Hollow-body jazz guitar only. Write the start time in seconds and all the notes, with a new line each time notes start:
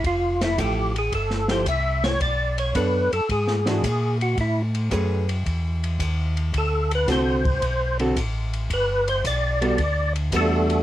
0.58 F3 A3 E4 G4
1.49 F3 A3 E4 G4
2.75 B3 D4 A4 C#5
3.66 E3 G#3 D4 F#4
4.92 A3 C#4 G#4 B4
7.08 D3 C4 F#4 A4
8.00 D3 C4 F#4 A4
9.61 G3 B3 F#4 A4
10.33 G3 B3 F#4 A4